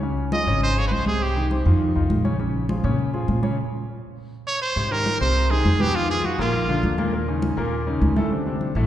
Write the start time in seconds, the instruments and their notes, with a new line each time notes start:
Already playing: upright bass C#2
0.03 grand piano C#3 C#4 C#5, high conga
0.17 high conga
0.32 grand piano F3 F4 G#4, trumpet D#5, high conga
0.47 upright bass G#1, grand piano C#3 C#4 C#5, high conga
0.62 trumpet C5, high conga
0.77 grand piano F3 F4 G#4, trumpet C#5, high conga
0.88 upright bass C2, trumpet B4, high conga
0.92 trumpet C5
1.06 grand piano C3 C4 C5, trumpet G#4, high conga
1.21 trumpet G4, high conga
1.36 grand piano D#3 D#4 G4, high conga
1.51 grand piano C3 C4 C5, high conga
1.66 upright bass F2, grand piano D#3 D#4 F4, high conga
1.81 high conga
1.95 upright bass C2, grand piano D#3 D#4 F4, high conga
2.10 upright bass A#1, high conga
2.25 grand piano C#3 C#4 C#5, high conga
2.39 grand piano C#3 C#4 C#5, high conga
2.54 high conga
2.69 grand piano F3 F4 G#4, high conga
2.84 upright bass A#2, grand piano C#3 C#4 C#5, high conga
2.99 high conga
3.13 grand piano F3 F4 G#4, high conga
3.28 upright bass A#2, high conga
3.43 grand piano C#3 C#4 C#5, high conga
4.47 trumpet C#5
4.61 trumpet C5
4.76 upright bass G#2, grand piano C3 C4 C5, high conga
4.91 grand piano D#3 D#4 G4, trumpet A#4, high conga
5.06 high conga
5.21 upright bass C2, grand piano C3 C4 C5, trumpet C5, high conga
5.36 high conga
5.50 grand piano D#3 D#4 G4, trumpet G#4, high conga
5.65 upright bass F2, high conga
5.80 grand piano B2 B3 B4, trumpet G4, high conga
5.95 grand piano D#3 D#4 F4, trumpet F4, high conga
6.09 grand piano D#3 D#4 F4, trumpet G#4, high conga
6.24 trumpet F#4, high conga
6.39 upright bass A#1, grand piano A#2 A#3 A#4, trumpet F4, high conga
6.54 high conga
6.69 grand piano D3 D4 F4, high conga
6.83 upright bass D#2, high conga
6.98 grand piano A#2 A#3 A#4, high conga
7.13 grand piano A#2 A#3 A#4, high conga
7.27 grand piano C#3 C#4 D#4, high conga
7.42 high conga
7.57 upright bass D#2, grand piano A#2 A#3 A#4, high conga
7.72 high conga
7.87 grand piano C#3 C#4 D#4, high conga
8.01 upright bass D2, high conga
8.16 grand piano A2 A3 A4, high conga
8.31 grand piano C3 C4 D4, high conga
8.46 grand piano C3 C4 D4, high conga
8.61 high conga
8.75 upright bass A1, grand piano A2 A3 A4, high conga